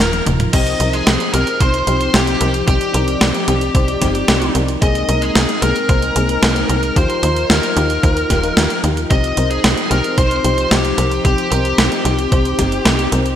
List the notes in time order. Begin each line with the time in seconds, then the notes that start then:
Already playing: F3 D#4 F4 A#4
0.00 D#1, snare, closed hi-hat
0.13 closed hi-hat, high tom
0.27 D#1, closed hi-hat, mid tom
0.40 closed hi-hat, mid tom
0.53 C2 C4 D#4 G4 C5 D#5, kick, closed hi-hat, crash
0.67 closed hi-hat
0.80 C2 C4 D#4 A#4, closed hi-hat
0.93 G#4, closed hi-hat
1.07 C2 C4 D#4 G4, snare, closed hi-hat
1.20 closed hi-hat
1.34 C2 C4 D#4 G4 A#4, closed hi-hat
1.47 closed hi-hat
1.60 C2 C4 D#4 C5, kick, closed hi-hat
1.74 closed hi-hat
1.87 C2 C4 D#4 G4, closed hi-hat
2.01 closed hi-hat
2.14 C2 C4 D#4 G4, snare, closed hi-hat
2.27 closed hi-hat
2.41 C2 C4 D#4 A#4, closed hi-hat
2.54 closed hi-hat
2.68 C2 C4 D#4 G4 D5, kick, closed hi-hat
2.81 closed hi-hat
2.94 C2 C4 D#4 G4 A#4, closed hi-hat
3.08 closed hi-hat
3.21 C2 C4 D#4 G4, snare, closed hi-hat
3.35 closed hi-hat
3.48 C2 C4 D#4 G4, closed hi-hat
3.61 closed hi-hat
3.75 C2 C4 D#4 C5, kick, closed hi-hat
3.88 closed hi-hat
4.01 G1 C4 D#4 G4, kick, snare, closed hi-hat
4.15 closed hi-hat
4.28 C2 C4 D#4 G4, snare, closed hi-hat
4.42 closed hi-hat
4.55 C2 C4 D#4 A#4, closed hi-hat
4.68 closed hi-hat
4.82 C2 G#3 A#3 C4 G#4 A#4 D#5, kick, closed hi-hat
4.95 closed hi-hat
5.09 C2 A#3 C4 A#4, closed hi-hat
5.22 G#4, closed hi-hat
5.35 C2 A#3 C4 G#4, snare, closed hi-hat
5.49 closed hi-hat
5.62 C2 A#3 C4 G#4 A#4, closed hi-hat
5.76 closed hi-hat
5.89 C2 A#3 C4 C5, kick, closed hi-hat
6.02 closed hi-hat
6.16 C2 A#3 C4 G#4, closed hi-hat
6.29 closed hi-hat
6.43 C2 A#3 C4 G#4, snare, closed hi-hat
6.56 closed hi-hat
6.69 C2 A#3 C4 A#4, closed hi-hat
6.83 closed hi-hat
6.96 D#2 F3 D#4 F4 G4 A#4 C5, kick, closed hi-hat
7.10 closed hi-hat
7.23 D#2 D#4 F4 A#4, closed hi-hat
7.36 closed hi-hat
7.50 D#2 D#4 F4 G4 A#4, snare, closed hi-hat
7.63 closed hi-hat
7.76 D#2 D#4 F4 G4, closed hi-hat
7.90 closed hi-hat
8.03 D#2 D#4 F4 C5, kick, closed hi-hat
8.17 closed hi-hat
8.30 D#1 D#4 F4 G4, kick, snare, closed hi-hat
8.43 D#4 F4 A#4, closed hi-hat
8.57 D#2 D#4 F4 G4, snare, closed hi-hat
8.70 closed hi-hat
8.84 D#2 D#4 F4 G4, closed hi-hat
8.97 closed hi-hat
9.10 C2 C4 D#4 G4 C5 D#5, kick, closed hi-hat
9.24 closed hi-hat
9.37 C2 C4 D#4 A#4, closed hi-hat
9.51 G#4, closed hi-hat
9.64 C2 C4 D#4 G4, snare, closed hi-hat
9.78 closed hi-hat
9.91 C2 C4 D#4 G4 A#4, closed hi-hat
10.04 closed hi-hat
10.18 C2 C4 D#4 C5, kick, closed hi-hat
10.31 closed hi-hat
10.44 C2 C4 D#4 G4, closed hi-hat
10.58 closed hi-hat
10.71 C2 C4 D#4 G4, snare, closed hi-hat
10.85 closed hi-hat
10.98 C2 C4 D#4 A#4, closed hi-hat
11.11 closed hi-hat
11.25 C2 C4 D#4 G4, kick, closed hi-hat
11.38 closed hi-hat
11.51 C2 C4 D#4 G4 A#4, closed hi-hat
11.65 closed hi-hat
11.78 C2 C4 D#4 G4, snare, closed hi-hat
11.92 closed hi-hat
12.05 C2 C4 D#4 G4, closed hi-hat
12.19 closed hi-hat
12.32 C2 C4 D#4 C5, kick, closed hi-hat
12.45 closed hi-hat
12.59 G1 C4 D#4 G4, kick, snare, closed hi-hat
12.72 closed hi-hat
12.85 C2 C4 D#4 G4, snare, closed hi-hat
12.99 closed hi-hat
13.12 C2 C4 D#4 A#4, closed hi-hat
13.26 closed hi-hat